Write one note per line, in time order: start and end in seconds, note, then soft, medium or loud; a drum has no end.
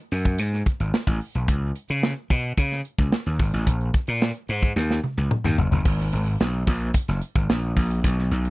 0.11 0.39 F#2 loud
0.11 open hi-hat medium
0.25 kick medium
0.25 closed hi-hat soft
0.38 0.62 G#2 loud
0.38 closed hi-hat loud
0.53 snare soft
0.66 kick medium
0.66 closed hi-hat medium
0.80 0.91 G#1 medium
0.80 closed hi-hat soft
0.94 snare loud
1.07 1.19 A1 medium
1.07 kick loud
1.07 closed hi-hat soft
1.21 open hi-hat medium
1.35 1.46 B1 medium
1.35 closed hi-hat medium
1.48 1.71 C#2 medium
1.48 kick loud
1.48 closed hi-hat medium
1.76 closed hi-hat medium
1.88 2.12 C#3 medium
1.88 closed hi-hat medium
2.03 snare loud
2.30 2.53 B2 medium
2.30 kick medium
2.30 open hi-hat medium
2.44 closed hi-hat soft
2.57 2.80 C#3 loud
2.57 kick loud
2.57 closed hi-hat medium
2.71 snare soft
2.71 closed hi-hat soft
2.85 closed hi-hat medium
2.98 3.10 C#2 medium
2.98 kick medium
2.98 closed hi-hat soft
3.12 snare loud
3.26 3.37 D#2 medium
3.39 3.51 G#1 medium
3.39 kick medium
3.39 open hi-hat medium
3.53 3.65 A1 medium
3.53 closed hi-hat medium
3.67 3.89 A#1 loud
3.67 kick loud
3.67 closed hi-hat loud
3.81 closed hi-hat soft
3.94 kick loud
3.94 closed hi-hat medium
4.07 4.31 A#2 medium
4.07 closed hi-hat medium
4.22 snare loud
4.35 closed hi-hat soft
4.48 4.72 G#2 loud
4.48 closed hi-hat medium
4.62 kick medium
4.62 closed hi-hat soft
4.76 4.99 D#2 loud
4.76 snare medium
4.91 snare medium
5.04 high tom medium
5.17 5.29 C#2 medium
5.31 mid tom medium
5.44 5.56 D#2 medium
5.44 mid tom medium
5.58 5.70 F#1 medium
5.58 floor tom loud
5.72 5.83 G1 medium
5.72 floor tom medium
5.86 6.08 G#1 loud
5.86 kick loud
5.86 crash loud
6.00 snare soft
6.00 closed hi-hat soft
6.13 6.35 G#1 loud
6.13 closed hi-hat medium
6.26 closed hi-hat medium
6.40 6.63 B1 medium
6.40 snare loud
6.53 closed hi-hat soft
6.67 6.90 A#1 medium
6.67 kick loud
6.67 open hi-hat medium
6.80 closed hi-hat medium
6.94 kick medium
6.94 closed hi-hat loud
7.08 7.20 F#1 medium
7.08 snare soft
7.21 closed hi-hat medium
7.36 7.47 G#1 medium
7.36 kick loud
7.36 closed hi-hat soft
7.49 7.72 A#1 medium
7.49 snare loud
7.62 closed hi-hat soft
7.76 7.99 A#1 loud
7.76 kick loud
7.76 open hi-hat medium
7.91 closed hi-hat medium
8.04 8.27 B1 loud
8.04 kick loud
8.04 closed hi-hat medium
8.18 snare soft
8.31 8.50 B1 loud
8.31 closed hi-hat medium
8.45 closed hi-hat medium